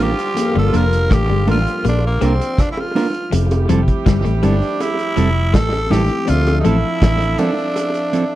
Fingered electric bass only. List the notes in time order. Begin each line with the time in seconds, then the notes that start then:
Already playing: A1
0.56 G1
0.74 F1
1.12 A1
1.30 G1
1.48 A1
1.85 A#1
2.22 C2
3.33 F1
3.70 F1
4.07 G1
4.26 A1
4.44 G1
5.18 F1
5.54 A1
5.92 A1
6.29 D2
6.66 A1
7.02 A1